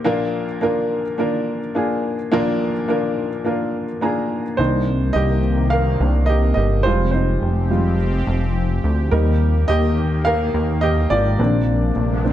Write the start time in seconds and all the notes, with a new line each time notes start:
0.04 A#1 A#2 A#3 D4 F4 A#4
0.61 A#3 D4 F4 A#4
1.18 A#3 D4 F4 A#4
1.75 A#3 D4 F4 G#4
2.31 A#1 A#2 A#3 D4 F4 A#4
2.88 A#3 D4 F4 A#4
3.44 A#3 D4 F4 A#4
4.01 A#3 D4 F4 G#4 A#5
4.57 C2 C3 D#3 A#3 D4 D#4 C5
5.13 C2 G4 D#5
5.70 A#4 F5
6.00 C2 D#3 A#3 D4
6.26 G4 D#5
6.54 G1 G4 D#5
6.83 F1 F3 G3 G#3 C4 F4 G4 C5
7.11 D#4 C5
7.42 F1
7.70 G3 G#3 F4
8.27 F1
8.84 D2
9.11 D#2 D#3 G3 A#3 D#4 A#4
9.68 D#2 G4 D#5
10.25 A#4 F5
10.54 D#2
10.81 G4 D#5
11.10 G#1 F4 D5
11.39 A#1 C3 A#3 C4 D4, riser
11.96 A#1
12.24 A#3 C4 D4